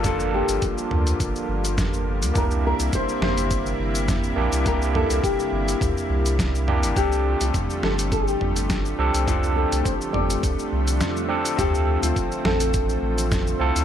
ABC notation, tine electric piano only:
X:1
M:4/4
L:1/8
Q:"Swing 16ths" 1/4=104
K:Cmix
V:1 name="Tine electric piano"
[B,DFA]6- [B,DFA] z | [B,DEG]6- [B,DEG] [B,DEG] | [B,DEG]6- [B,DEG] [B,DEG] | [CDGA]6- [CDGA] [CDGA] |
[CDGA]6- [CDGA] [CDGA] | [CFAe]6- [CFAe] [CEFA] |]